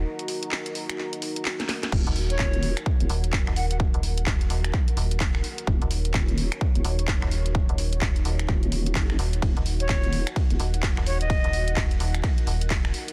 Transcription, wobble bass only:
X:1
M:4/4
L:1/16
Q:"Swing 16ths" 1/4=128
K:Ebm
V:1 name="Wobble bass" clef=bass
z16 | E,,, z3 E,,,3 z2 E,,, z6 | z16 | E,,, z3 E,,,3 z2 E,,, z6 |
z8 E,,,2 E,,,2 G,,,2 z2 | E,,, z3 E,,,3 z2 E,,, z6 | z16 |]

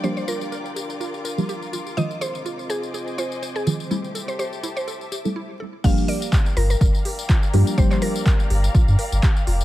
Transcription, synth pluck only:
X:1
M:4/4
L:1/16
Q:"Swing 16ths" 1/4=124
K:Gm
V:1 name="Synth pluck"
c c B6 z8 | e z c4 _A z3 c z2 A z2 | z3 c c z2 c3 z6 | f z d4 B B z8 |
c c B6 z8 |]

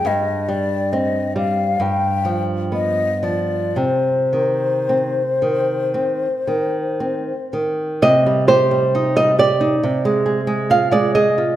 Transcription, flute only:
X:1
M:4/4
L:1/8
Q:1/4=66
K:Cm
V:1 name="Flute"
e d e f g z e d | c6- c z | z8 |]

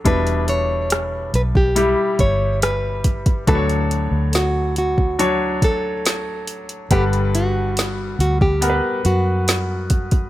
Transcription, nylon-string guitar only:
X:1
M:4/4
L:1/16
Q:1/4=70
K:Edor
V:1 name="Nylon-string guitar"
B2 c4 B G3 c2 B4 | A4 F2 F4 A6 | G2 F4 F G3 F6 |]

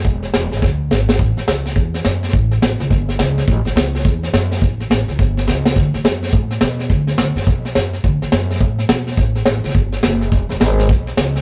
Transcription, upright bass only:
X:1
M:4/4
L:1/8
Q:"Swing" 1/4=210
K:Amix
V:1 name="Upright bass" clef=bass
E,,,2 E,,, ^G,,, D,,2 G,,,2 | A,,, A,,, C,,2 E,,2 F,,2 | A,,,2 A,,, C,, G,,,2 C,,2 | A,,, A,,, C,,2 E,,2 F,,2 |
A,,,2 A,,, C,, G,,,2 C,,2 | D,, D,, F,,2 A,,2 B,,2 | D,,2 D,, F,, B,,,2 F,,2 | D,, D,, F,,2 A,,2 B,,2 |
A,,,2 A,,, C,, G,,,2 F,,,2 | E,,, E,,, ^G,,,2 B,,,2 C,,2 |]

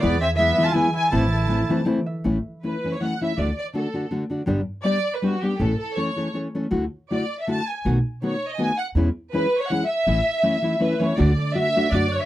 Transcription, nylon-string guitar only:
X:1
M:3/4
L:1/8
Q:"Swing" 1/4=162
K:Am
V:1 name="Nylon-string guitar"
[E,,B,,E,^G,B,E] z [E,G,B,E] [E,G,B,E] [E,G,B,E] z | [A,,E,A,CE] z [E,A,CE] [E,A,CE] [E,A,CE] z | [K:A] [A,,E,A,CE] z [E,A,CE] [E,A,CE] [E,A,CE] [E,A,CE] | [D,A,DF] z [D,A,DF] [D,A,DF] [D,A,DF] [D,A,DF] |
[=G,,D,=G,B,D=G] z [G,B,DG] z [G,B,DG] [G,B,DG] | [A,,E,A,CA] z [E,A,CA] [E,A,CA] [E,A,CA] [E,A,CA] | [D,A,EF] z [D,A,EF] z [D,A,EF] z | [B,,^D,A,B,F] z [D,A,B,F] z [D,A,B,F] z |
[E,,B,,E,G,CE] z [E,G,CE] z [E,G,CE] z | [A,,E,A,CE] z [E,A,CE] [E,A,CE] [E,A,CE] [E,A,CE] | [K:D] [D,A,DF] z [D,A,DF] [D,A,DF] [D,A,DF] z |]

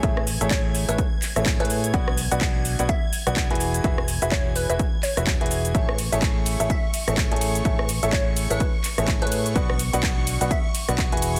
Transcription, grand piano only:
X:1
M:4/4
L:1/16
Q:"Swing 16ths" 1/4=126
K:A
V:1 name="Grand piano"
[A,EGAce] z2 [A,EGAce]4 [A,EGAce] z3 [A,EGAce]2 [A,EGAcg]3 | [B,,DFBdf] z2 [B,,DFBdf]4 [B,,DFBdf] z3 [B,,DFBdf]2 [E,EFGBg]3 | [E,EFGBe] z2 [E,EFGBe]4 [E,EFGBe] z3 [E,EFGBe]2 [E,EFGBg]3 | [A,EGAce] z2 [A,EGAce]4 [A,EGAce] z3 [A,EGAce]2 [A,EGAcg]3 |
[A,EGAce] z2 [A,EGAce]4 [A,EGAce] z3 [A,EGAce]2 [A,EGAcg]3 | [B,,DFBdf] z2 [B,,DFBdf]4 [B,,DFBdf] z3 [B,,DFBdf]2 [E,EFGBg]3 |]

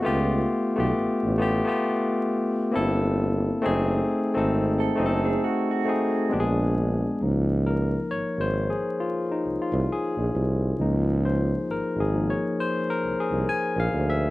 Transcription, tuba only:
X:1
M:4/4
L:1/16
Q:"Swing 16ths" 1/4=67
K:Gblyd
V:1 name="Tuba" clef=bass
D,,2 z _C,, =A,,, A,,,2 z4 z =G,,,4 | G,,,2 z A,,,3 G,,,2 z4 B,,,4 | D,,4 A,,, A,,,2 z3 C,, C,, z B,,, C,,2 | D,,4 A,,, A,,,2 z3 C,, C,, z B,,, =D,,2 |]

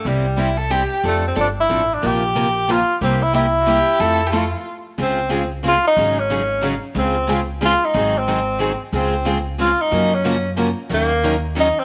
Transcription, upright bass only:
X:1
M:3/4
L:1/8
Q:"Swing" 1/4=182
K:F
V:1 name="Upright bass" clef=bass
C,,6 | F,,2 G,,,2 A,,,2 | B,,,6 | C,,6 |
F,,4 z2 | [K:Db] D,,6 | A,,,6 | D,,6 |
A,,,6 | D,,6 | G,,6 | E,,6 |]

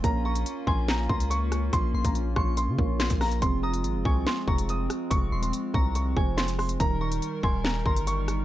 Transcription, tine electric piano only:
X:1
M:4/4
L:1/8
Q:1/4=142
K:Fm
V:1 name="Tine electric piano"
[B,Bdf]8- | [B,Bdf]4- [B,Bdf] [B,Bdf]3 | [F,CFA]8- | [F,CFA]4- [F,CFA] [F,FAc]3 |
[E,G,EB]8 |]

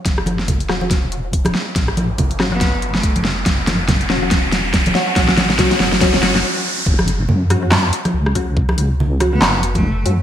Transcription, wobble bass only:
X:1
M:4/4
L:1/8
Q:"Swing 16ths" 1/4=141
K:F#phr
V:1 name="Wobble bass" clef=bass
F,,,3 E,,,4 z | A,,,2 G,,,4 F,,,2 | F,,,3 E,,,4 z | A,,,2 z F,,,2 F,,, z2 |
F,,,2 F,,3 z C,,2- | C,,4 F,,,3 F,, |]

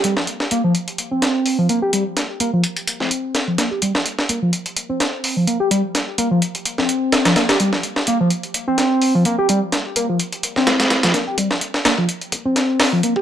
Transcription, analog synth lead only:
X:1
M:4/4
L:1/16
Q:"Swing 16ths" 1/4=127
K:Gm
V:1 name="Analog synth lead"
G, z3 B, F, z3 C4 F, B, G | G, z3 B, F, z3 C4 F, B, G | G, z3 B, F, z3 C4 F, B, G | G, z3 B, F, z3 C4 F, B, G |
G, z3 B, F, z3 C4 F, B, G | G, z3 B, F, z3 C4 F, B, G | G, z3 B, F, z3 C4 F, B, G |]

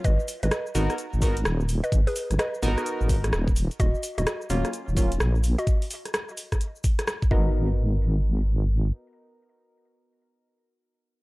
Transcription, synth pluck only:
X:1
M:4/4
L:1/16
Q:"Swing 16ths" 1/4=128
K:G#m
V:1 name="Synth pluck"
[Bd]2 z [Bd]2 z8 z2 [Bd] | z [GB]2 z [Bd]2 z8 z2 | [Fd]2 z [Fd]2 z8 z2 [Fd] | z12 z2 d2- |
d16- | d16 |]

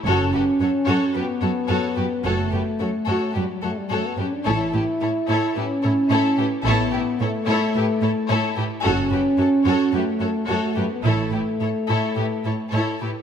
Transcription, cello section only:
X:1
M:4/4
L:1/8
Q:1/4=109
K:Amix
V:1 name="Cello section" clef=bass
F,, F,, F,, F,, F,, F,, F,, F,, | F,, F,, F,, F,, F,, F,, F,, F,, | A,, A,, A,, A,, A,, A,, A,, A,, | A,, A,, A,, A,, A,, A,, A,, A,, |
F,, F,, F,, F,, F,, F,, F,, F,, | A,, A,, A,, A,, A,, A,, A,, A,, |]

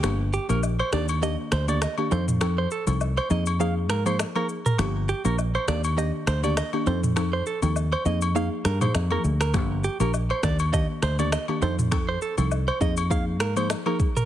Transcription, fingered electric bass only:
X:1
M:4/4
L:1/16
Q:"Swing 16ths" 1/4=101
K:Eb
V:1 name="Fingered electric bass" clef=bass
G,,,3 B,,,3 E,,4 D,,3 z F,,2- | F,,3 C,,3 F,,4 A,,3 z3 | G,,,3 B,,,3 E,,4 D,,3 z F,,2- | F,,3 E,,3 F,,4 G,,2 F,,2 D,,2 |
G,,,3 B,,,3 E,,4 D,,3 z F,,2- | F,,3 C,,3 F,,4 A,,3 z3 |]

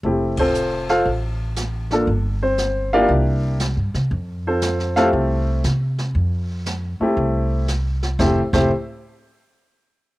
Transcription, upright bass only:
X:1
M:4/4
L:1/8
Q:"Swing" 1/4=118
K:F
V:1 name="Upright bass" clef=bass
F,,,4 A,,,4 | G,,,4 C,,2- (3C,, G,, C, | F,,4 C,,2 C,2 | F,,3 z C,,4 |
F,,, F,,, z6 |]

